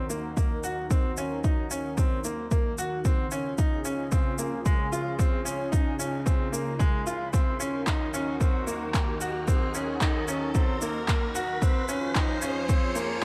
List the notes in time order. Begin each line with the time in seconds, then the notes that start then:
Already playing: D#3 D#4 F#4 A#4, riser
0.10 A#3, shaker
0.37 A#3, kick, shaker
0.64 F#4, shaker
0.91 C4, kick, shaker
1.17 C#4, shaker
1.44 D#4, kick, shaker
1.71 C#4, shaker
1.97 C4, kick, shaker
2.24 A#3, shaker
2.51 A#3, kick, shaker
2.78 F#4, shaker
3.04 C#3 C4 C#4 F4 G#4, kick, shaker
3.31 C#4, shaker
3.58 D#4, kick, shaker
3.85 C#4, shaker
4.12 C4, kick, shaker
4.38 A#3, shaker
4.66 G#3, kick, shaker
4.92 F4, shaker
5.19 C4, kick, shaker
5.45 C#4, shaker
5.72 D#4, kick, shaker
5.99 C#4, shaker
6.26 C4, kick, shaker
6.52 A#3, shaker
6.79 G#3, kick, shaker
7.07 F4, shaker
7.33 D#3 C4 D#4 F#4 A#4, kick, shaker
7.60 C#4, shaker
7.87 D#4, kick, clap, shaker
8.14 C#4, shaker
8.40 C4, kick, shaker
8.67 A#3, shaker
8.94 A#3, kick, clap, shaker
9.21 F#4, shaker
9.48 C4, kick, shaker
9.74 C#4, shaker
10.01 D#4, kick, clap, shaker
10.28 C#4, shaker
10.55 C4, kick, shaker
10.81 A#3, shaker
11.08 A#3, kick, clap, shaker
11.35 F#4, shaker
11.61 F3 C4 F4 G#4 C5, kick, shaker
11.88 C#4, shaker
12.15 D#4, kick, clap, shaker
12.42 C#4, shaker
12.69 C4, kick, shaker
12.95 A#3, shaker